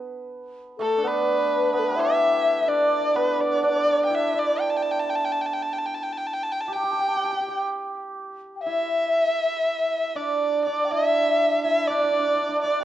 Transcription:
0.00 0.79 A3 medium
0.00 1.04 B3 soft
0.00 0.64 D4 soft
0.78 5.22 A3 medium
0.78 1.05 A4 medium
0.78 1.09 A4 medium
0.98 2.68 D4 medium
1.03 1.73 B3 medium
1.03 1.73 B4 medium
1.07 1.75 B4 medium
1.73 3.15 B3 medium
1.73 1.81 B4 medium
1.73 2.01 B4 medium
1.79 1.86 A4 medium
1.85 1.97 B4 medium
1.90 5.04 G4 medium
1.95 2.61 E4 medium
1.95 2.70 E5 loud
1.95 2.62 E5 medium
2.61 4.10 E4 medium
2.61 2.70 E5 medium
2.68 3.38 D4 medium
2.68 3.15 D5 medium
2.68 3.18 D5 medium
3.15 7.28 B3 medium
3.15 3.66 B4 medium
3.15 3.42 B4 medium
3.39 3.63 D4 medium
3.39 3.64 D5 medium
3.63 4.34 D4 medium
3.63 3.71 D5 medium
3.63 4.03 D5 medium
3.70 3.78 B4 medium
3.76 4.34 D5 medium
4.06 4.16 G5 medium
4.10 7.58 E4 medium
4.15 4.41 E5 medium
4.34 8.07 D4 medium
4.34 4.58 D5 medium
4.39 4.62 D5 medium
4.61 4.72 G5 medium
4.70 4.79 A5 medium
4.77 4.84 G5 medium
4.83 4.93 A5 medium
4.91 5.01 G5 medium
5.00 5.12 A5 medium
5.10 5.17 G5 medium
5.16 5.27 A5 medium
5.25 5.34 G5 medium
5.33 5.43 A5 medium
5.42 5.48 G5 medium
5.46 5.55 A5 medium
5.53 5.64 G5 medium
5.62 5.75 A5 medium
5.73 5.80 G5 medium
5.79 5.87 A5 medium
5.86 5.96 G5 medium
5.94 6.05 A5 medium
6.03 6.14 G5 medium
6.13 6.19 A5 medium
6.17 6.28 G5 medium
6.27 6.35 A5 medium
6.33 6.45 G5 medium
6.43 6.53 A5 medium
6.52 6.62 G5 medium
6.61 6.74 A5 medium
6.68 6.75 G4 medium
6.68 6.77 G5 medium
6.73 6.83 G4 medium
6.73 7.64 G5 medium
6.73 6.86 A5 medium
6.83 6.92 G4 medium
6.83 6.93 G5 medium
6.91 6.99 G4 soft
6.91 7.02 A5 medium
6.99 7.08 G4 soft
6.99 7.10 G5 medium
7.08 7.16 G4 soft
7.08 7.18 A5 medium
7.16 7.24 G4 medium
7.16 7.26 G5 medium
7.24 7.32 G4 soft
7.24 7.33 A5 medium
7.32 7.40 G4 medium
7.32 7.60 G5 medium
7.40 7.48 G4 soft
7.48 10.62 G4 medium
8.56 8.63 G5 soft
8.62 9.63 E5 medium
8.62 10.18 E5 medium
8.66 10.91 E4 medium
9.65 10.17 E5 medium
10.15 10.66 D4 medium
10.15 10.64 D5 medium
10.65 11.90 D4 medium
10.65 10.93 D5 medium
10.65 10.86 D5 medium
10.85 10.93 G5 soft
10.91 11.64 E4 medium
10.91 11.64 E5 medium
10.91 11.63 E5 medium
11.63 12.84 E4 medium
11.63 11.88 E5 medium
11.63 11.89 E5 medium
11.87 11.99 D4 medium
11.87 11.96 D5 medium
11.87 12.61 D5 medium
11.95 12.04 E5 medium
11.99 12.04 D4 soft
11.99 12.61 D5 medium
12.04 12.11 D4 medium
12.11 12.19 D4 soft
12.19 12.27 D4 soft
12.27 12.35 D4 soft
12.35 12.42 D4 soft
12.43 12.48 D4 soft
12.49 12.64 D4 medium
12.62 12.84 D4 medium
12.62 12.84 D5 medium
12.80 12.84 G4 medium

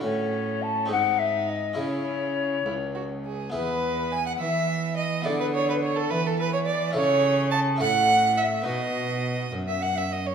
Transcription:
0.00 0.85 A2 soft
0.00 0.85 C#4 soft
0.00 0.85 F#4 soft
0.04 0.92 A2 medium
0.04 0.93 C#4 medium
0.04 0.64 C#5 medium
0.62 0.91 A5 medium
0.86 1.73 C4 soft
0.86 1.74 D#4 soft
0.86 1.75 G#4 soft
0.90 1.74 G#2 soft
0.90 1.77 G#2 medium
0.90 1.78 D#4 medium
0.90 1.21 F#5 medium
1.19 1.51 E5 medium
1.49 1.81 D#5 medium
1.73 3.49 C#4 soft
1.73 3.49 E4 soft
1.73 3.50 G#4 soft
1.77 2.62 C#3 soft
1.77 2.65 C#3 medium
1.77 2.59 E4 soft
1.77 3.27 C#5 medium
2.65 3.51 C#2 soft
2.65 3.53 C#2 soft
2.65 2.73 E4 medium
2.95 3.03 F#4 medium
3.25 3.53 G#4 soft
3.50 5.20 B3 soft
3.50 5.21 E4 soft
3.50 5.21 G#4 soft
3.50 4.13 B4 medium
3.54 4.37 E2 soft
3.54 4.37 E2 medium
3.54 4.15 B4 medium
4.12 4.26 G#5 medium
4.12 4.27 G#5 medium
4.26 4.32 F#5 medium
4.26 4.41 F#5 medium
4.39 5.29 E3 medium
4.39 5.23 E3 soft
4.39 4.96 E5 medium
4.39 4.97 E5 medium
4.97 5.27 D#5 medium
4.97 5.04 D#5 medium
5.22 6.89 B3 soft
5.22 6.90 E4 soft
5.22 6.91 G#4 soft
5.22 5.39 D5 medium
5.26 6.07 D3 medium
5.26 6.11 D3 medium
5.26 5.40 D5 medium
5.40 5.46 B4 medium
5.40 5.54 B4 medium
5.54 5.68 C#5 medium
5.54 5.69 C#5 medium
5.69 5.75 B4 medium
5.69 5.83 B4 medium
5.82 5.97 C#5 medium
5.82 5.99 C#5 medium
5.96 6.11 A4 medium
5.96 6.14 A4 medium
6.10 6.97 E3 medium
6.10 6.92 E3 medium
6.10 6.28 B4 medium
6.10 6.26 B4 medium
6.26 6.39 A4 medium
6.26 6.42 A4 medium
6.39 6.52 B4 medium
6.39 6.54 B4 medium
6.53 6.59 C#5 medium
6.53 6.61 C#5 medium
6.66 6.94 D5 medium
6.66 6.96 D5 medium
6.91 7.75 C#4 soft
6.91 7.76 E4 soft
6.91 7.77 A4 soft
6.95 7.77 C#3 medium
6.95 7.83 C#3 medium
6.95 7.50 C#5 medium
6.95 7.56 C#5 medium
7.51 7.59 A5 medium
7.51 7.81 A5 medium
7.76 8.62 C#4 medium
7.76 8.62 E4 soft
7.76 8.63 A4 medium
7.80 8.62 A2 medium
7.80 8.66 A2 medium
7.80 8.39 F#5 loud
7.80 8.37 F#5 medium
8.37 8.65 E5 medium
8.37 8.68 E5 medium
8.62 10.33 B3 soft
8.62 10.34 D#4 soft
8.62 10.35 F#4 soft
8.66 9.48 B2 soft
8.66 9.51 B2 medium
8.66 9.50 D#5 medium
8.66 9.40 D#5 medium
9.52 10.35 F#2 medium
9.67 9.83 E5 medium
9.67 9.84 E5 medium
9.81 9.97 F#5 medium
9.81 9.99 F#5 medium
9.96 10.12 E5 medium
9.96 10.14 E5 medium
10.11 10.25 D#5 medium
10.11 10.28 D#5 medium
10.26 10.32 C#5 medium
10.26 10.35 C#5 medium

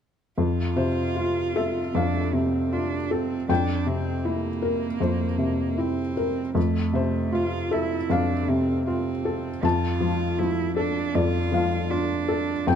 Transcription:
0.38 1.91 F2 soft
0.38 1.96 F4 soft
0.76 1.39 C3 soft
0.76 1.51 C5 soft
1.16 1.79 F4 soft
1.56 2.18 A4 soft
1.56 1.92 E5 soft
1.95 3.45 F2 soft
1.95 2.36 D4 soft
1.95 3.46 F5 soft
2.33 2.95 C3 soft
2.33 2.74 C4 soft
2.72 3.13 D4 soft
2.72 3.34 F4 soft
3.11 3.50 C4 soft
3.11 3.49 A4 soft
3.49 4.98 F2 soft
3.49 3.89 D4 soft
3.49 4.98 G5 medium
3.86 4.48 C3 soft
3.86 4.28 C4 soft
4.25 5.81 A#3 soft
4.25 4.86 E4 soft
4.62 5.24 A#4 soft
5.00 6.52 F2 soft
5.00 6.13 C5 soft
5.38 6.01 C3 soft
5.78 6.56 C4 soft
5.78 6.40 E4 soft
6.17 6.56 A#4 soft
6.55 8.06 F2 soft
6.55 7.36 A3 soft
6.93 7.56 C3 soft
6.93 7.68 C5 soft
7.32 7.95 F4 soft
7.32 7.74 F4 soft
7.71 8.13 E4 soft
7.71 8.33 A4 soft
7.71 8.08 E5 soft
8.10 9.59 F2 soft
8.10 8.51 D4 soft
8.10 9.60 F5 soft
8.48 9.10 C3 soft
8.48 8.86 C4 soft
8.87 9.64 C4 soft
8.87 9.48 F4 soft
9.25 9.63 A4 soft
9.63 11.11 F2 soft
9.63 10.40 F4 soft
9.63 11.12 A5 medium
10.00 10.38 F3 soft
10.39 11.00 F3 soft
10.39 10.76 E4 soft
10.77 11.16 D4 soft
10.77 11.38 A4 soft
11.14 12.63 F2 soft
11.14 11.92 F4 medium
11.14 11.51 D5 medium
11.52 12.13 F3 soft
11.52 12.63 F5 soft
11.90 12.68 D4 soft
11.90 12.51 F4 soft
12.29 12.67 A4 soft
12.66 12.75 F2 soft
12.66 12.75 C4 soft
12.66 12.75 G5 medium

